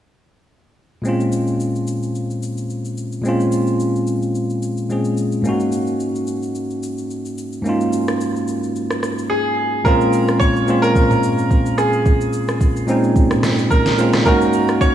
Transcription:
1.02 tine electric piano A#2 G#3 C4, shaker
1.07 tine electric piano C#4 F4
1.20 shaker
1.32 shaker
1.47 shaker
1.60 shaker
1.76 shaker
1.87 shaker
2.03 shaker
2.15 shaker
2.30 shaker
2.43 shaker
2.57 shaker
2.70 shaker
2.85 shaker
2.97 shaker
3.12 shaker
3.22 tine electric piano A#2 G#3 C4, shaker
3.27 tine electric piano C#4 F4
3.40 shaker
3.52 shaker
3.67 shaker
3.80 shaker
3.96 shaker
4.07 shaker
4.22 shaker
4.35 shaker
4.50 shaker
4.62 shaker
4.77 shaker
4.89 tine electric piano A#2 G#3 C4 C#4 G#4, shaker
5.05 shaker
5.17 shaker
5.32 shaker
5.42 tine electric piano G#2 A#3 C#4, shaker
5.47 tine electric piano D#4 F#4
5.60 shaker
5.72 shaker
5.87 shaker
6.00 shaker
6.15 shaker
6.27 shaker
6.43 shaker
6.55 shaker
6.70 shaker
6.83 shaker
6.98 shaker
7.10 shaker
7.25 shaker
7.38 shaker
7.52 shaker
7.62 tine electric piano G#2 A#3 C#4, shaker
7.67 tine electric piano D#4 F4
7.81 shaker
7.93 shaker
8.08 cross-stick, shaker
8.21 shaker
8.36 shaker
8.48 shaker
8.63 shaker
8.76 shaker
8.91 cross-stick, shaker
9.03 cross-stick, shaker
9.18 shaker
9.30 grand piano G#4
9.84 tine electric piano A#2 G#3 C4 C#4 F4, grand piano A#4, kick, shaker
10.01 shaker
10.13 shaker
10.28 cross-stick, shaker
10.40 grand piano C#5, kick, shaker
10.56 shaker
10.67 tine electric piano A#2 G#3 C4 C#4 F4, shaker
10.82 grand piano A#4, shaker
10.96 kick, shaker
11.11 mid tom, shaker
11.23 shaker
11.38 shaker
11.51 kick, shaker
11.66 shaker
11.78 grand piano G#4, cross-stick, shaker
11.93 shaker
12.06 kick, shaker
12.21 shaker
12.33 shaker
12.48 cross-stick, shaker
12.61 kick, shaker
12.76 shaker
12.87 tine electric piano A#2 G#3 C4 C#4 D#4, shaker
13.04 shaker
13.16 kick, shaker
13.31 cross-stick, mid tom, shaker
13.43 cross-stick, snare, shaker
13.59 shaker
13.70 grand piano A#4, kick, shaker
13.86 snare, shaker
13.97 tine electric piano A#2 G#3 C4 C#4 F4, shaker
14.13 cross-stick, snare, shaker
14.25 tine electric piano G#2 A#3 C#4 D#4 F#4, grand piano A#4, kick, shaker
14.41 shaker
14.53 shaker
14.68 cross-stick, shaker
14.81 grand piano C#5, kick, shaker

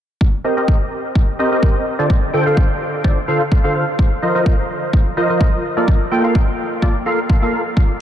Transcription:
0.21 kick
0.44 synth stab C4 G4 A#4 C5 D#5
0.57 synth stab C4 G4 A#4 C5 D#5
0.68 kick
1.15 kick
1.39 synth stab C4 G4 A#4 C5 D#5
1.52 synth stab C4 G4 A#4 C5 D#5
1.63 kick
1.99 synth stab D3 F4 A4 C5 D5
2.10 kick
2.33 synth stab D3 F4 A4 C5 G5
2.46 synth stab D3 F4 A4 C5 F5
2.57 kick
3.04 synth stab D3 F4 A4 C5 D5, kick
3.28 synth stab D3 F4 A4 C5 F5
3.52 kick
3.64 synth stab D3 F4 A4 C5 F5
3.99 kick
4.22 synth stab F3 F4 A#4 C5 D#5
4.35 synth stab F3 F4 A#4 C5 D#5
4.46 kick
4.93 kick
5.17 synth stab F3 F4 A#4 C5 D#5
5.30 synth stab F3 F4 A#4 C5 D#5
5.41 kick
5.77 synth stab A#3 F4 A4 A#4 D5
5.88 kick
6.11 synth stab A#3 F4 A4 A#4 G5
6.24 synth stab A#3 F4 A4 A#4 F5
6.35 kick
6.82 synth stab A#3 F4 A4 A#4 D5, kick
7.06 synth stab A#3 F4 A4 A#4 F5
7.30 kick
7.42 synth stab A#3 F4 A4 A#4 F5
7.77 kick

